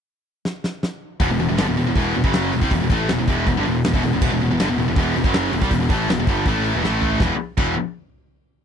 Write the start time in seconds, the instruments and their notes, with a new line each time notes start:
0.45 snare
0.64 snare
0.83 snare
1.20 picked electric bass E1, distorted electric guitar E2 B2, kick, open hi-hat
1.30 picked electric bass E1, distorted electric guitar E2 B2
1.39 picked electric bass E1, distorted electric guitar E2 B2, open hi-hat
1.49 picked electric bass E1, distorted electric guitar E2 B2
1.58 picked electric bass G1, distorted electric guitar G2 D3, snare, open hi-hat
1.67 picked electric bass E1, distorted electric guitar E2 B2
1.77 picked electric bass E1, distorted electric guitar E2 B2, open hi-hat
1.87 picked electric bass E1, distorted electric guitar E2 B2
1.95 picked electric bass E1, distorted electric guitar E2 B2 E3, kick, open hi-hat
2.14 picked electric bass E1, distorted electric guitar E2 B2, open hi-hat
2.24 picked electric bass F#1, distorted electric guitar F#2 C#3 F#3, kick
2.33 snare, open hi-hat
2.53 picked electric bass E1, distorted electric guitar E2 B2, open hi-hat
2.61 picked electric bass C2, distorted electric guitar C3 G3, kick
2.71 picked electric bass E1, distorted electric guitar E2 B2, kick, open hi-hat
2.80 picked electric bass E1, distorted electric guitar E2 B2
2.90 picked electric bass A1, distorted electric guitar A2 E3 A3, kick, open hi-hat
3.08 picked electric bass E1, distorted electric guitar E2 B2, snare, open hi-hat
3.18 picked electric bass E1, distorted electric guitar E2 B2
3.28 picked electric bass E1, distorted electric guitar E2 B2 E3, kick, open hi-hat
3.47 picked electric bass E1, distorted electric guitar E2 B2, kick, open hi-hat
3.57 picked electric bass G1, distorted electric guitar G2 D3
3.66 picked electric bass E1, distorted electric guitar E2 B2, open hi-hat
3.84 picked electric bass E1, distorted electric guitar E2 B2, snare, open hi-hat
3.94 picked electric bass E1, distorted electric guitar E2 B2, kick
4.03 picked electric bass E1, distorted electric guitar E2 B2, open hi-hat
4.14 picked electric bass E1, distorted electric guitar E2 B2
4.22 picked electric bass E1, distorted electric guitar E2 B2, kick, crash
4.32 picked electric bass E1, distorted electric guitar E2 B2
4.40 picked electric bass E1, distorted electric guitar E2 B2, open hi-hat
4.51 picked electric bass E1, distorted electric guitar E2 B2
4.59 picked electric bass G1, distorted electric guitar G2 D3, snare, open hi-hat
4.69 picked electric bass E1, distorted electric guitar E2 B2
4.78 picked electric bass E1, distorted electric guitar E2 B2, open hi-hat
4.88 picked electric bass E1, distorted electric guitar E2 B2
4.96 picked electric bass E1, distorted electric guitar E2 B2 E3, kick, open hi-hat
5.15 picked electric bass E1, distorted electric guitar E2 B2, open hi-hat
5.24 picked electric bass F#1, distorted electric guitar F#2 C#3 F#3, kick
5.33 snare, open hi-hat
5.52 picked electric bass E1, distorted electric guitar E2 B2, open hi-hat
5.62 picked electric bass C2, distorted electric guitar C3 G3, kick
5.71 picked electric bass E1, distorted electric guitar E2 B2, kick, open hi-hat
5.80 picked electric bass E1, distorted electric guitar E2 B2
5.90 picked electric bass A1, distorted electric guitar A2 E3 A3, kick, open hi-hat
6.08 picked electric bass E1, distorted electric guitar E2 B2, snare, open hi-hat
6.18 picked electric bass E1, distorted electric guitar E2 B2
6.27 picked electric bass G1, distorted electric guitar G2 D3 G3, kick, open hi-hat
6.46 picked electric bass A1, distorted electric guitar A2 E3 A3, kick, open hi-hat
6.65 open hi-hat
6.75 picked electric bass E1, distorted electric guitar E2 B2
6.83 picked electric bass A1, distorted electric guitar A2 E3 A3, snare
7.02 floor tom
7.20 picked electric bass E1, distorted electric guitar E2 B2 E3, kick, snare
7.57 picked electric bass E1, distorted electric guitar E2 B2 E3, kick, crash